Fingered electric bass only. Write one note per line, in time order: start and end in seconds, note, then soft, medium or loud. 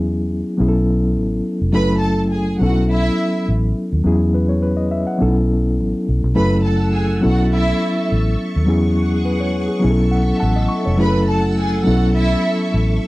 0.00 0.42 E2 loud
0.60 1.17 B1 medium
1.17 1.40 A1 medium
1.61 1.74 F1 medium
1.74 2.57 F#1 loud
2.61 3.08 B1 medium
3.48 3.72 A1 medium
3.93 4.03 D#2 medium
4.05 5.04 E2 medium
5.22 5.80 B1 medium
5.80 5.92 A1 medium
6.09 6.21 B1 medium
6.24 6.35 B1 medium
6.37 7.20 F#1 loud
7.25 7.72 B1 medium
8.12 8.35 A1 medium
8.56 8.70 D#2 medium
8.70 9.67 E2 loud
9.84 10.31 B1 medium
10.42 10.66 A1 loud
10.87 11.00 F1 medium
11.00 11.82 F#1 loud
11.87 12.34 B1 medium
12.74 12.97 A1 medium